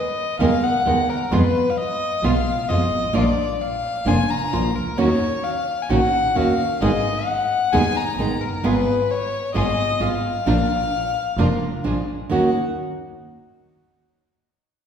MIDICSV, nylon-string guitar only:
0, 0, Header, 1, 2, 480
1, 0, Start_track
1, 0, Key_signature, -6, "minor"
1, 0, Tempo, 457666
1, 1377, Time_signature, 4, 2, 24, 8
1, 15585, End_track
2, 0, Start_track
2, 0, Title_t, "Nylon-string guitar"
2, 0, Program_c, 0, 24
2, 419, Note_on_c, 0, 51, 79
2, 421, Note_on_c, 0, 59, 80
2, 423, Note_on_c, 0, 56, 82
2, 427, Note_on_c, 0, 63, 84
2, 428, Note_on_c, 0, 70, 84
2, 512, Note_off_c, 0, 51, 0
2, 513, Note_off_c, 0, 59, 0
2, 514, Note_off_c, 0, 56, 0
2, 516, Note_off_c, 0, 63, 0
2, 517, Note_off_c, 0, 70, 0
2, 895, Note_on_c, 0, 51, 64
2, 899, Note_on_c, 0, 56, 60
2, 904, Note_on_c, 0, 63, 68
2, 905, Note_on_c, 0, 59, 59
2, 907, Note_on_c, 0, 70, 62
2, 1074, Note_off_c, 0, 51, 0
2, 1076, Note_off_c, 0, 56, 0
2, 1079, Note_off_c, 0, 59, 0
2, 1079, Note_off_c, 0, 63, 0
2, 1080, Note_off_c, 0, 70, 0
2, 1377, Note_on_c, 0, 53, 82
2, 1381, Note_on_c, 0, 56, 84
2, 1386, Note_on_c, 0, 59, 92
2, 1387, Note_on_c, 0, 65, 86
2, 1471, Note_off_c, 0, 53, 0
2, 1473, Note_off_c, 0, 56, 0
2, 1476, Note_off_c, 0, 59, 0
2, 1477, Note_off_c, 0, 65, 0
2, 2347, Note_on_c, 0, 53, 71
2, 2350, Note_on_c, 0, 56, 85
2, 2353, Note_on_c, 0, 59, 84
2, 2353, Note_on_c, 0, 65, 89
2, 2436, Note_off_c, 0, 53, 0
2, 2438, Note_off_c, 0, 56, 0
2, 2440, Note_off_c, 0, 59, 0
2, 2440, Note_off_c, 0, 65, 0
2, 2827, Note_on_c, 0, 53, 59
2, 2830, Note_on_c, 0, 56, 58
2, 2831, Note_on_c, 0, 59, 68
2, 2833, Note_on_c, 0, 65, 71
2, 3001, Note_off_c, 0, 53, 0
2, 3002, Note_off_c, 0, 56, 0
2, 3002, Note_off_c, 0, 59, 0
2, 3004, Note_off_c, 0, 65, 0
2, 3284, Note_on_c, 0, 53, 77
2, 3285, Note_on_c, 0, 58, 82
2, 3289, Note_on_c, 0, 62, 85
2, 3295, Note_on_c, 0, 65, 92
2, 3385, Note_off_c, 0, 53, 0
2, 3386, Note_off_c, 0, 58, 0
2, 3388, Note_off_c, 0, 62, 0
2, 3391, Note_off_c, 0, 65, 0
2, 4254, Note_on_c, 0, 53, 72
2, 4259, Note_on_c, 0, 58, 89
2, 4259, Note_on_c, 0, 62, 76
2, 4266, Note_on_c, 0, 65, 83
2, 4352, Note_off_c, 0, 53, 0
2, 4354, Note_off_c, 0, 62, 0
2, 4355, Note_off_c, 0, 58, 0
2, 4358, Note_off_c, 0, 65, 0
2, 4744, Note_on_c, 0, 53, 57
2, 4751, Note_on_c, 0, 58, 67
2, 4751, Note_on_c, 0, 62, 65
2, 4753, Note_on_c, 0, 65, 69
2, 4922, Note_off_c, 0, 53, 0
2, 4926, Note_off_c, 0, 58, 0
2, 4926, Note_off_c, 0, 62, 0
2, 4927, Note_off_c, 0, 65, 0
2, 5220, Note_on_c, 0, 51, 84
2, 5223, Note_on_c, 0, 58, 80
2, 5225, Note_on_c, 0, 61, 85
2, 5225, Note_on_c, 0, 66, 84
2, 5317, Note_off_c, 0, 51, 0
2, 5318, Note_off_c, 0, 58, 0
2, 5319, Note_off_c, 0, 61, 0
2, 5320, Note_off_c, 0, 66, 0
2, 6184, Note_on_c, 0, 51, 82
2, 6187, Note_on_c, 0, 58, 77
2, 6189, Note_on_c, 0, 61, 76
2, 6191, Note_on_c, 0, 66, 87
2, 6280, Note_off_c, 0, 51, 0
2, 6282, Note_off_c, 0, 58, 0
2, 6283, Note_off_c, 0, 61, 0
2, 6284, Note_off_c, 0, 66, 0
2, 6662, Note_on_c, 0, 51, 61
2, 6669, Note_on_c, 0, 58, 64
2, 6671, Note_on_c, 0, 61, 67
2, 6671, Note_on_c, 0, 66, 69
2, 6843, Note_off_c, 0, 51, 0
2, 6846, Note_off_c, 0, 58, 0
2, 6848, Note_off_c, 0, 61, 0
2, 6848, Note_off_c, 0, 66, 0
2, 7149, Note_on_c, 0, 51, 77
2, 7152, Note_on_c, 0, 56, 80
2, 7154, Note_on_c, 0, 59, 89
2, 7156, Note_on_c, 0, 63, 84
2, 7157, Note_on_c, 0, 68, 84
2, 7243, Note_off_c, 0, 51, 0
2, 7244, Note_off_c, 0, 56, 0
2, 7245, Note_off_c, 0, 59, 0
2, 7246, Note_off_c, 0, 63, 0
2, 7247, Note_off_c, 0, 68, 0
2, 8108, Note_on_c, 0, 51, 77
2, 8108, Note_on_c, 0, 56, 86
2, 8109, Note_on_c, 0, 59, 82
2, 8112, Note_on_c, 0, 68, 86
2, 8115, Note_on_c, 0, 63, 76
2, 8200, Note_off_c, 0, 56, 0
2, 8201, Note_off_c, 0, 51, 0
2, 8201, Note_off_c, 0, 59, 0
2, 8203, Note_off_c, 0, 68, 0
2, 8204, Note_off_c, 0, 63, 0
2, 8589, Note_on_c, 0, 56, 61
2, 8590, Note_on_c, 0, 51, 59
2, 8597, Note_on_c, 0, 59, 66
2, 8598, Note_on_c, 0, 63, 67
2, 8602, Note_on_c, 0, 68, 65
2, 8765, Note_off_c, 0, 51, 0
2, 8765, Note_off_c, 0, 56, 0
2, 8768, Note_off_c, 0, 59, 0
2, 8769, Note_off_c, 0, 63, 0
2, 8771, Note_off_c, 0, 68, 0
2, 9057, Note_on_c, 0, 56, 80
2, 9063, Note_on_c, 0, 59, 80
2, 9066, Note_on_c, 0, 65, 94
2, 9154, Note_off_c, 0, 56, 0
2, 9157, Note_off_c, 0, 59, 0
2, 9158, Note_off_c, 0, 65, 0
2, 10007, Note_on_c, 0, 56, 86
2, 10018, Note_on_c, 0, 59, 81
2, 10021, Note_on_c, 0, 65, 83
2, 10108, Note_off_c, 0, 56, 0
2, 10113, Note_off_c, 0, 59, 0
2, 10115, Note_off_c, 0, 65, 0
2, 10484, Note_on_c, 0, 56, 61
2, 10491, Note_on_c, 0, 59, 66
2, 10494, Note_on_c, 0, 65, 65
2, 10669, Note_off_c, 0, 56, 0
2, 10672, Note_off_c, 0, 59, 0
2, 10674, Note_off_c, 0, 65, 0
2, 10972, Note_on_c, 0, 53, 81
2, 10977, Note_on_c, 0, 58, 86
2, 10979, Note_on_c, 0, 62, 91
2, 10984, Note_on_c, 0, 65, 90
2, 11069, Note_off_c, 0, 53, 0
2, 11071, Note_off_c, 0, 58, 0
2, 11073, Note_off_c, 0, 62, 0
2, 11075, Note_off_c, 0, 65, 0
2, 11935, Note_on_c, 0, 53, 69
2, 11937, Note_on_c, 0, 58, 75
2, 11941, Note_on_c, 0, 62, 87
2, 11947, Note_on_c, 0, 65, 94
2, 12031, Note_off_c, 0, 53, 0
2, 12032, Note_off_c, 0, 58, 0
2, 12034, Note_off_c, 0, 62, 0
2, 12036, Note_off_c, 0, 65, 0
2, 12417, Note_on_c, 0, 53, 59
2, 12419, Note_on_c, 0, 56, 62
2, 12423, Note_on_c, 0, 62, 69
2, 12425, Note_on_c, 0, 65, 60
2, 12598, Note_off_c, 0, 53, 0
2, 12598, Note_off_c, 0, 56, 0
2, 12600, Note_off_c, 0, 62, 0
2, 12601, Note_off_c, 0, 65, 0
2, 12896, Note_on_c, 0, 51, 80
2, 12905, Note_on_c, 0, 58, 76
2, 12910, Note_on_c, 0, 61, 76
2, 12917, Note_on_c, 0, 66, 88
2, 13091, Note_off_c, 0, 51, 0
2, 13095, Note_off_c, 0, 58, 0
2, 13098, Note_off_c, 0, 61, 0
2, 13101, Note_off_c, 0, 66, 0
2, 15585, End_track
0, 0, End_of_file